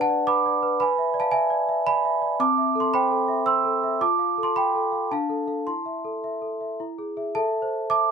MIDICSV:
0, 0, Header, 1, 2, 480
1, 0, Start_track
1, 0, Key_signature, 0, "minor"
1, 0, Tempo, 530973
1, 727, Time_signature, 3, 2, 24, 8
1, 3614, Tempo, 557103
1, 7161, End_track
2, 0, Start_track
2, 0, Title_t, "Celesta"
2, 0, Program_c, 0, 8
2, 0, Control_c, 0, 64, 127
2, 0, Note_on_c, 0, 62, 65
2, 0, Note_on_c, 0, 71, 52
2, 0, Note_on_c, 0, 74, 56
2, 0, Note_on_c, 0, 78, 94
2, 9, Note_on_c, 0, 81, 100
2, 17, Note_off_c, 0, 78, 0
2, 17, Note_on_c, 0, 78, 71
2, 88, Note_off_c, 0, 74, 0
2, 88, Note_on_c, 0, 74, 53
2, 185, Note_off_c, 0, 71, 0
2, 238, Note_off_c, 0, 78, 0
2, 244, Note_on_c, 0, 86, 100
2, 246, Note_on_c, 0, 71, 53
2, 250, Note_off_c, 0, 81, 0
2, 255, Note_on_c, 0, 83, 83
2, 345, Note_off_c, 0, 74, 0
2, 413, Note_on_c, 0, 74, 59
2, 474, Note_off_c, 0, 83, 0
2, 485, Note_off_c, 0, 86, 0
2, 502, Note_off_c, 0, 71, 0
2, 566, Note_on_c, 0, 71, 58
2, 664, Note_off_c, 0, 74, 0
2, 685, Note_off_c, 0, 62, 0
2, 714, Note_off_c, 0, 71, 0
2, 723, Note_on_c, 0, 83, 95
2, 725, Note_on_c, 0, 71, 64
2, 740, Note_on_c, 0, 80, 78
2, 741, Control_c, 0, 64, 0
2, 889, Note_on_c, 0, 76, 56
2, 890, Control_c, 0, 64, 127
2, 1030, Note_on_c, 0, 74, 58
2, 1068, Note_off_c, 0, 80, 0
2, 1082, Note_on_c, 0, 81, 102
2, 1084, Note_off_c, 0, 83, 0
2, 1093, Note_on_c, 0, 77, 72
2, 1143, Note_off_c, 0, 76, 0
2, 1189, Note_on_c, 0, 80, 96
2, 1201, Note_off_c, 0, 77, 0
2, 1202, Note_on_c, 0, 76, 76
2, 1204, Note_off_c, 0, 81, 0
2, 1294, Note_off_c, 0, 74, 0
2, 1359, Note_on_c, 0, 74, 55
2, 1515, Note_off_c, 0, 76, 0
2, 1526, Note_on_c, 0, 76, 54
2, 1618, Note_off_c, 0, 74, 0
2, 1676, Note_off_c, 0, 80, 0
2, 1687, Note_on_c, 0, 74, 56
2, 1687, Note_on_c, 0, 83, 110
2, 1698, Note_on_c, 0, 80, 81
2, 1781, Note_off_c, 0, 76, 0
2, 1853, Note_on_c, 0, 76, 55
2, 1942, Note_off_c, 0, 74, 0
2, 2004, Note_on_c, 0, 74, 53
2, 2106, Note_off_c, 0, 76, 0
2, 2130, Note_off_c, 0, 71, 0
2, 2140, Note_off_c, 0, 80, 0
2, 2166, Note_off_c, 0, 74, 0
2, 2166, Note_on_c, 0, 60, 68
2, 2168, Note_off_c, 0, 83, 0
2, 2170, Note_on_c, 0, 86, 100
2, 2176, Note_on_c, 0, 81, 77
2, 2185, Control_c, 0, 64, 0
2, 2329, Note_on_c, 0, 76, 50
2, 2349, Control_c, 0, 64, 127
2, 2489, Note_on_c, 0, 69, 57
2, 2508, Note_off_c, 0, 81, 0
2, 2530, Note_off_c, 0, 86, 0
2, 2533, Note_on_c, 0, 84, 79
2, 2545, Note_on_c, 0, 81, 60
2, 2585, Note_off_c, 0, 76, 0
2, 2649, Note_off_c, 0, 81, 0
2, 2651, Note_off_c, 0, 84, 0
2, 2654, Note_on_c, 0, 83, 101
2, 2656, Note_on_c, 0, 72, 58
2, 2664, Note_on_c, 0, 79, 73
2, 2744, Note_off_c, 0, 69, 0
2, 2812, Note_on_c, 0, 69, 51
2, 2907, Note_off_c, 0, 72, 0
2, 2968, Note_on_c, 0, 76, 51
2, 3065, Note_off_c, 0, 69, 0
2, 3101, Note_off_c, 0, 79, 0
2, 3126, Note_on_c, 0, 72, 48
2, 3128, Note_on_c, 0, 88, 92
2, 3129, Note_off_c, 0, 83, 0
2, 3138, Note_on_c, 0, 84, 77
2, 3223, Note_off_c, 0, 76, 0
2, 3297, Note_on_c, 0, 69, 49
2, 3384, Note_off_c, 0, 72, 0
2, 3468, Note_on_c, 0, 76, 49
2, 3553, Note_off_c, 0, 69, 0
2, 3576, Note_off_c, 0, 60, 0
2, 3586, Note_off_c, 0, 84, 0
2, 3614, Note_off_c, 0, 88, 0
2, 3622, Note_off_c, 0, 76, 0
2, 3625, Note_on_c, 0, 65, 60
2, 3626, Note_on_c, 0, 86, 93
2, 3629, Control_c, 0, 64, 0
2, 3634, Note_on_c, 0, 81, 65
2, 3757, Control_c, 0, 64, 127
2, 3778, Note_on_c, 0, 77, 48
2, 3942, Note_on_c, 0, 69, 49
2, 3952, Note_off_c, 0, 81, 0
2, 3972, Note_off_c, 0, 86, 0
2, 3988, Note_on_c, 0, 84, 78
2, 3997, Note_on_c, 0, 81, 64
2, 4024, Note_off_c, 0, 77, 0
2, 4091, Note_off_c, 0, 81, 0
2, 4094, Note_off_c, 0, 84, 0
2, 4099, Note_on_c, 0, 77, 44
2, 4099, Note_on_c, 0, 83, 84
2, 4108, Note_on_c, 0, 79, 70
2, 4184, Note_off_c, 0, 69, 0
2, 4263, Note_on_c, 0, 69, 45
2, 4343, Note_off_c, 0, 77, 0
2, 4407, Note_on_c, 0, 77, 41
2, 4504, Note_off_c, 0, 69, 0
2, 4534, Note_off_c, 0, 65, 0
2, 4537, Note_off_c, 0, 79, 0
2, 4561, Note_off_c, 0, 77, 0
2, 4564, Note_off_c, 0, 83, 0
2, 4570, Control_c, 0, 64, 0
2, 4575, Note_on_c, 0, 62, 49
2, 4577, Note_on_c, 0, 81, 80
2, 4589, Note_on_c, 0, 77, 61
2, 4723, Control_c, 0, 64, 127
2, 4731, Note_on_c, 0, 69, 44
2, 4872, Note_off_c, 0, 69, 0
2, 4878, Note_off_c, 0, 77, 0
2, 4882, Note_on_c, 0, 69, 39
2, 4888, Note_on_c, 0, 77, 46
2, 5028, Note_off_c, 0, 69, 0
2, 5031, Note_off_c, 0, 77, 0
2, 5037, Note_off_c, 0, 62, 0
2, 5052, Note_off_c, 0, 81, 0
2, 5052, Note_on_c, 0, 84, 67
2, 5055, Note_on_c, 0, 64, 46
2, 5056, Control_c, 0, 64, 0
2, 5062, Note_on_c, 0, 81, 50
2, 5215, Note_on_c, 0, 76, 40
2, 5236, Control_c, 0, 64, 127
2, 5378, Note_on_c, 0, 69, 43
2, 5474, Note_off_c, 0, 76, 0
2, 5545, Note_on_c, 0, 76, 42
2, 5638, Note_off_c, 0, 69, 0
2, 5700, Note_on_c, 0, 69, 37
2, 5801, Note_off_c, 0, 76, 0
2, 5863, Note_on_c, 0, 76, 35
2, 5958, Note_off_c, 0, 69, 0
2, 5998, Note_off_c, 0, 81, 0
2, 6000, Note_off_c, 0, 64, 0
2, 6023, Note_off_c, 0, 76, 0
2, 6027, Note_off_c, 0, 84, 0
2, 6029, Note_on_c, 0, 64, 47
2, 6038, Control_c, 0, 64, 0
2, 6187, Note_on_c, 0, 68, 40
2, 6214, Control_c, 0, 64, 127
2, 6336, Note_off_c, 0, 68, 0
2, 6347, Note_on_c, 0, 68, 39
2, 6347, Note_on_c, 0, 76, 41
2, 6490, Note_off_c, 0, 68, 0
2, 6490, Note_off_c, 0, 76, 0
2, 6495, Note_off_c, 0, 64, 0
2, 6502, Note_on_c, 0, 81, 89
2, 6503, Note_on_c, 0, 69, 63
2, 6512, Note_on_c, 0, 76, 60
2, 6522, Control_c, 0, 64, 0
2, 6647, Control_c, 0, 64, 127
2, 6736, Note_on_c, 0, 72, 52
2, 6948, Note_off_c, 0, 76, 0
2, 6974, Note_on_c, 0, 76, 54
2, 6975, Note_on_c, 0, 86, 105
2, 6976, Note_off_c, 0, 81, 0
2, 6985, Note_on_c, 0, 81, 87
2, 7115, Note_off_c, 0, 72, 0
2, 7161, Note_off_c, 0, 69, 0
2, 7161, Note_off_c, 0, 76, 0
2, 7161, Note_off_c, 0, 81, 0
2, 7161, Note_off_c, 0, 86, 0
2, 7161, End_track
0, 0, End_of_file